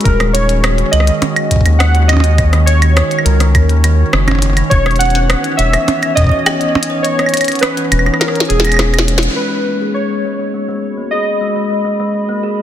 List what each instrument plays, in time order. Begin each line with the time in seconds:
Already playing: analog synth pad C#4 F#4
0.01 synth keys A#4, closed hi-hat
0.05 analog synth bass D#1, analog synth pad D#3, kick, closed hi-hat
0.20 kalimba D#3, cross-stick, closed hi-hat, claves
0.33 kalimba D#4, synth keys C#5, closed hi-hat
0.49 closed hi-hat
0.64 kalimba D#3, cross-stick, closed hi-hat, claves
0.78 kalimba D#3, closed hi-hat
0.91 analog synth bass C#2, kalimba D#3, synth keys D#5, closed hi-hat, claves
1.00 cross-stick
1.07 kalimba D#3, closed hi-hat
1.22 kalimba D#3, closed hi-hat, percussion blips
1.36 closed hi-hat, claves
1.46 analog synth pad C#5
1.51 kalimba D#3, kick, closed hi-hat
1.56 kick
1.61 kick
1.65 analog synth bass D#2, kalimba D#4, closed hi-hat, claves
1.79 synth keys F#5, cross-stick, closed hi-hat
1.95 kalimba D#3, closed hi-hat
2.08 kalimba D#3, synth keys D#5, closed hi-hat, percussion blips, claves
2.13 percussion blips
2.17 percussion blips
2.20 kalimba D#3, closed hi-hat, percussion blips
2.38 kalimba D#3, kick, closed hi-hat, claves
2.53 kalimba D#3, cross-stick, closed hi-hat
2.66 synth keys C#5, closed hi-hat
2.82 kalimba D#3, closed hi-hat, claves
2.97 kalimba D#4, cross-stick, closed hi-hat
3.11 closed hi-hat
3.19 claves
3.24 analog synth bass C#2, kalimba D#3, synth keys A#4, closed hi-hat
3.40 kalimba D#3, cross-stick, closed hi-hat
3.55 analog synth bass D#2, kalimba D#3, kick, closed hi-hat, claves
3.69 kalimba D#3, closed hi-hat
3.84 kalimba D#3, closed hi-hat, claves
4.13 analog synth bass F#1, kalimba D#3, cross-stick
4.28 kalimba D#4, closed hi-hat, percussion blips, claves
4.31 percussion blips
4.35 percussion blips
4.39 closed hi-hat, percussion blips
4.42 percussion blips
4.46 percussion blips
4.50 percussion blips
4.53 kalimba D#3, closed hi-hat, percussion blips, claves
4.70 analog synth bass E1, analog synth pad E3, kalimba C#4, synth keys C#5, kick, closed hi-hat
4.81 analog synth pad B3
4.86 kalimba C#4, cross-stick, closed hi-hat
4.91 closed hi-hat
4.96 synth keys F#5, closed hi-hat
5.00 kalimba C#4, closed hi-hat
5.05 closed hi-hat
5.10 closed hi-hat
5.15 kalimba C#4, closed hi-hat
5.30 cross-stick, closed hi-hat, claves
5.44 kalimba D#4, closed hi-hat
5.57 analog synth bass E1, kalimba C#5, synth keys E5, closed hi-hat
5.73 cross-stick, closed hi-hat, claves
5.88 kalimba C#4, closed hi-hat, percussion blips
6.02 kalimba C#4, closed hi-hat, claves
6.15 kalimba C#4, synth keys D#5, kick, closed hi-hat
6.19 kick
6.22 kick
6.24 kick
6.27 kick
6.29 kalimba C#4, kick
6.46 kalimba C#4, cross-stick, closed hi-hat, claves
6.61 closed hi-hat
6.75 kalimba D#4, percussion blips
6.83 closed hi-hat
6.90 kalimba C#5
7.03 synth keys C#5, closed hi-hat
7.19 kalimba C#4, cross-stick, closed hi-hat, claves
7.26 closed hi-hat, claves
7.34 kalimba C#4, closed hi-hat, claves
7.37 closed hi-hat
7.41 closed hi-hat, claves
7.44 closed hi-hat
7.48 kalimba C#4, closed hi-hat, claves
7.52 closed hi-hat
7.55 closed hi-hat
7.59 synth keys B4, cross-stick, closed hi-hat
7.63 kalimba C#4, closed hi-hat
7.77 kalimba C#4, closed hi-hat
7.92 analog synth bass E1, closed hi-hat, claves
7.99 claves
8.06 kalimba D#4, cross-stick, claves
8.14 cross-stick, claves
8.19 synth keys A#4, kalimba C#5, cross-stick, snare, closed hi-hat, claves
8.28 cross-stick
8.35 closed hi-hat
8.40 snare, closed hi-hat
8.45 synth keys G#4, closed hi-hat
8.50 analog synth bass E1, kalimba G#3, closed hi-hat
8.60 snare
8.65 kalimba C#4, closed hi-hat, claves
8.67 claves
8.69 closed hi-hat, claves
8.72 claves
8.74 claves
8.77 analog synth bass E1, kalimba C#4, cross-stick, snare, claves
8.94 kalimba C#4, closed hi-hat, claves
8.99 snare
9.08 kalimba D#4, closed hi-hat
9.18 snare
9.23 kalimba C#4, closed hi-hat
9.36 analog synth pad G#3, kalimba G#3, synth keys B4
9.67 kalimba A#3
9.81 kalimba G#4
9.94 synth keys C#5
10.10 kalimba G#3
10.25 kalimba G#3
10.39 kalimba G#3
10.52 kalimba G#3, analog synth pad F#4
10.68 kalimba G#3
10.74 analog synth pad B5
10.98 kalimba A#3
11.11 kalimba G#4, synth keys D#5
11.41 kalimba G#3
11.56 kalimba G#3
11.70 kalimba G#3
11.85 kalimba G#3
12.00 kalimba G#3
12.29 kalimba A#3
12.43 kalimba G#4